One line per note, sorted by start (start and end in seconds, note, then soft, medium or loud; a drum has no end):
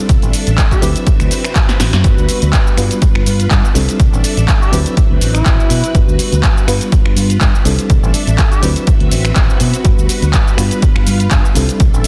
0.00 0.78 G3 medium
0.00 0.78 C4 medium
0.00 0.78 D4 medium
0.00 0.82 D4 medium
0.00 0.78 E4 medium
0.00 0.78 A4 medium
0.00 0.81 A4 medium
0.00 2.02 E5 medium
0.09 0.20 C2 loud
0.09 kick loud
0.09 closed hi-hat medium
0.09 shaker soft
0.22 0.32 A1 loud
0.22 closed hi-hat soft
0.22 shaker soft
0.33 open hi-hat loud
0.33 shaker medium
0.47 0.56 A1 loud
0.47 closed hi-hat medium
0.47 shaker soft
0.58 kick loud
0.58 clap loud
0.58 closed hi-hat medium
0.58 shaker soft
0.71 0.88 G4 medium
0.71 kick medium
0.71 shaker soft
0.81 0.93 D2 medium
0.81 1.99 F#3 medium
0.81 2.00 C4 medium
0.81 2.03 C4 medium
0.81 2.00 D4 medium
0.81 2.00 E4 medium
0.81 2.76 F#4 medium
0.81 2.03 B4 medium
0.81 2.00 B4 loud
0.81 open hi-hat medium
0.81 shaker medium
0.96 closed hi-hat medium
0.96 shaker soft
1.07 kick loud
1.07 closed hi-hat medium
1.07 shaker soft
1.20 1.29 D2 medium
1.20 finger snap medium
1.20 closed hi-hat soft
1.20 shaker soft
1.31 open hi-hat loud
1.31 shaker medium
1.45 finger snap medium
1.45 closed hi-hat medium
1.45 shaker soft
1.56 kick loud
1.56 clap loud
1.56 closed hi-hat medium
1.56 shaker soft
1.69 snare medium
1.69 closed hi-hat soft
1.69 shaker soft
1.80 1.91 A1 medium
1.80 snare medium
1.80 open hi-hat medium
1.80 shaker medium
1.93 2.02 F#2 medium
1.93 snare medium
1.93 closed hi-hat medium
1.93 shaker soft
2.04 2.15 G1 loud
2.04 2.73 G3 medium
2.04 2.73 B3 medium
2.04 2.73 D4 medium
2.04 2.73 F#4 medium
2.04 2.76 B4 medium
2.04 2.74 B4 medium
2.04 kick loud
2.04 closed hi-hat medium
2.04 shaker soft
2.18 2.27 D2 loud
2.18 shaker soft
2.29 open hi-hat loud
2.29 shaker medium
2.42 2.51 D2 loud
2.42 closed hi-hat medium
2.42 shaker soft
2.53 kick loud
2.53 clap loud
2.53 closed hi-hat medium
2.53 shaker soft
2.67 shaker soft
2.77 2.89 G2 medium
2.77 3.70 G3 medium
2.77 3.71 B3 medium
2.77 3.71 D4 medium
2.77 3.74 F4 medium
2.77 3.71 F4 medium
2.77 3.74 B4 medium
2.77 3.71 B4 medium
2.77 finger snap medium
2.77 open hi-hat medium
2.77 shaker medium
2.91 closed hi-hat medium
2.91 shaker soft
3.02 muted fingered electric bass stroke soft
3.02 kick loud
3.02 closed hi-hat medium
3.02 shaker soft
3.15 3.24 G1 medium
3.15 finger snap medium
3.26 3.47 G2 medium
3.26 open hi-hat loud
3.26 shaker medium
3.40 closed hi-hat medium
3.40 shaker soft
3.51 3.62 G2 medium
3.51 kick loud
3.51 clap loud
3.51 closed hi-hat medium
3.51 shaker soft
3.65 shaker soft
3.74 3.86 C2 medium
3.74 4.68 G3 medium
3.74 4.68 C4 medium
3.74 4.72 D4 medium
3.74 4.68 D4 medium
3.74 4.68 E4 medium
3.74 4.72 A4 medium
3.74 4.69 A4 medium
3.74 5.92 E5 medium
3.74 open hi-hat medium
3.74 shaker medium
3.89 closed hi-hat medium
3.89 shaker soft
4.00 4.11 C2 loud
4.00 kick loud
4.00 closed hi-hat medium
4.00 shaker soft
4.13 4.22 A1 loud
4.13 shaker soft
4.24 open hi-hat loud
4.24 shaker medium
4.37 4.46 A1 medium
4.37 closed hi-hat medium
4.37 shaker soft
4.48 kick loud
4.48 clap loud
4.48 closed hi-hat medium
4.48 shaker soft
4.61 4.78 G4 loud
4.61 shaker soft
4.72 4.84 D2 medium
4.72 5.90 F#3 loud
4.72 5.90 C4 medium
4.72 5.94 C4 medium
4.72 5.90 D4 medium
4.72 5.90 E4 medium
4.72 6.66 F#4 medium
4.72 7.63 B4 medium
4.72 5.91 B4 loud
4.72 open hi-hat loud
4.72 shaker medium
4.86 closed hi-hat medium
4.86 shaker soft
4.97 kick loud
4.97 closed hi-hat medium
4.97 shaker soft
5.11 5.20 D2 medium
5.21 5.42 A1 medium
5.21 open hi-hat loud
5.21 shaker medium
5.35 6.00 E4 medium
5.35 finger snap medium
5.35 closed hi-hat medium
5.35 shaker soft
5.46 5.57 A1 medium
5.46 kick loud
5.46 clap loud
5.46 closed hi-hat medium
5.46 shaker soft
5.60 shaker soft
5.70 5.81 B2 medium
5.70 open hi-hat loud
5.70 shaker medium
5.84 closed hi-hat medium
5.84 shaker soft
5.94 6.06 G1 loud
5.94 6.63 G3 medium
5.94 6.63 B3 medium
5.94 6.63 D4 medium
5.94 6.64 F#4 medium
5.94 6.64 B4 medium
5.94 kick loud
5.94 closed hi-hat medium
5.94 shaker soft
6.08 6.17 D2 loud
6.08 shaker soft
6.19 open hi-hat loud
6.19 shaker medium
6.32 6.41 D2 medium
6.32 closed hi-hat medium
6.32 shaker soft
6.43 kick loud
6.43 clap loud
6.43 closed hi-hat medium
6.43 shaker soft
6.57 shaker soft
6.67 6.79 G2 medium
6.67 7.61 G3 medium
6.67 7.61 B3 medium
6.67 7.61 D4 medium
6.67 7.65 F4 medium
6.67 7.61 F4 medium
6.67 7.61 B4 medium
6.67 finger snap medium
6.67 open hi-hat loud
6.67 shaker medium
6.81 closed hi-hat medium
6.81 shaker soft
6.92 muted fingered electric bass stroke soft
6.92 kick loud
6.92 closed hi-hat medium
6.92 shaker soft
7.06 7.15 G1 medium
7.06 finger snap medium
7.16 7.37 G2 medium
7.16 open hi-hat loud
7.16 shaker medium
7.30 closed hi-hat medium
7.30 shaker soft
7.41 7.52 G2 medium
7.41 kick loud
7.41 clap loud
7.41 closed hi-hat medium
7.41 shaker soft
7.55 shaker soft
7.65 7.76 C2 medium
7.65 8.58 G3 medium
7.65 8.58 C4 medium
7.65 8.59 D4 medium
7.65 8.62 D4 medium
7.65 8.59 E4 medium
7.65 8.62 A4 medium
7.65 8.59 A4 medium
7.65 8.61 E5 medium
7.65 open hi-hat loud
7.65 shaker medium
7.79 closed hi-hat medium
7.79 shaker soft
7.90 8.01 C2 loud
7.90 kick loud
7.90 closed hi-hat medium
7.90 shaker soft
8.03 8.12 A1 loud
8.03 shaker soft
8.14 open hi-hat loud
8.14 shaker medium
8.27 8.36 A1 medium
8.27 closed hi-hat medium
8.27 shaker soft
8.38 kick loud
8.38 clap loud
8.38 closed hi-hat medium
8.38 shaker soft
8.52 8.68 G4 loud
8.52 closed hi-hat soft
8.52 shaker soft
8.62 8.74 D2 medium
8.62 9.80 F#3 loud
8.62 9.80 C4 medium
8.62 9.83 C4 medium
8.62 9.80 D4 medium
8.62 9.81 E4 medium
8.62 9.84 F#4 medium
8.62 9.83 B4 medium
8.62 9.81 B4 loud
8.62 9.84 E5 medium
8.62 open hi-hat loud
8.62 shaker medium
8.76 closed hi-hat soft
8.76 shaker soft
8.87 kick loud
8.87 closed hi-hat medium
8.87 shaker soft
9.00 9.10 D2 medium
9.00 closed hi-hat soft
9.11 9.32 A1 medium
9.11 open hi-hat loud
9.11 shaker medium
9.25 finger snap medium
9.25 closed hi-hat medium
9.25 shaker soft
9.36 9.47 A1 medium
9.36 kick loud
9.36 clap loud
9.36 closed hi-hat medium
9.36 shaker soft
9.50 shaker soft
9.60 9.71 B2 medium
9.60 open hi-hat loud
9.60 shaker medium
9.73 closed hi-hat soft
9.73 shaker soft
9.84 9.96 G1 loud
9.84 10.53 G3 medium
9.84 10.53 B3 medium
9.84 10.54 D4 medium
9.84 10.54 F#4 medium
9.84 10.57 F#4 medium
9.84 11.54 B4 medium
9.84 10.54 B4 medium
9.84 kick loud
9.84 closed hi-hat medium
9.84 shaker soft
9.98 10.07 D2 loud
9.98 shaker soft
10.09 open hi-hat loud
10.09 shaker medium
10.22 10.31 D2 medium
10.22 closed hi-hat medium
10.22 shaker soft
10.33 kick loud
10.33 clap loud
10.33 closed hi-hat medium
10.33 shaker soft
10.48 shaker soft
10.57 10.69 G2 medium
10.57 11.51 G3 medium
10.57 11.51 B3 medium
10.57 11.51 D4 medium
10.57 11.55 F4 medium
10.57 11.51 F4 medium
10.57 11.51 B4 medium
10.57 finger snap medium
10.57 open hi-hat loud
10.57 shaker medium
10.71 closed hi-hat medium
10.71 shaker soft
10.82 muted fingered electric bass stroke soft
10.82 kick loud
10.82 closed hi-hat medium
10.82 shaker soft
10.96 11.05 G1 medium
10.96 finger snap medium
11.07 11.27 G2 medium
11.07 open hi-hat loud
11.07 shaker medium
11.20 closed hi-hat medium
11.20 shaker soft
11.31 11.42 G2 medium
11.31 kick loud
11.31 clap loud
11.31 closed hi-hat medium
11.31 shaker soft
11.45 shaker soft
11.55 11.67 C2 medium
11.55 12.07 G3 medium
11.55 12.07 C4 medium
11.55 12.07 D4 medium
11.55 12.07 E4 medium
11.55 12.07 A4 medium
11.55 12.07 E5 medium
11.55 open hi-hat loud
11.55 shaker medium
11.69 closed hi-hat soft
11.69 shaker soft
11.80 11.91 C2 loud
11.80 kick loud
11.80 closed hi-hat medium
11.80 shaker soft
11.94 12.03 A1 loud
11.94 shaker soft
12.04 open hi-hat loud